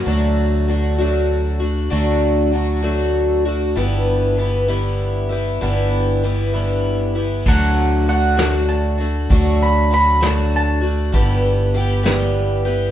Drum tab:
CC |------|------|------|------|
HH |------|------|------|------|
SD |------|------|------|------|
BD |------|------|------|------|

CC |x-----|------|------|
HH |-xxxxx|xxxxxx|xxxxxx|
SD |---o--|---o--|---o--|
BD |o-----|o-----|o-----|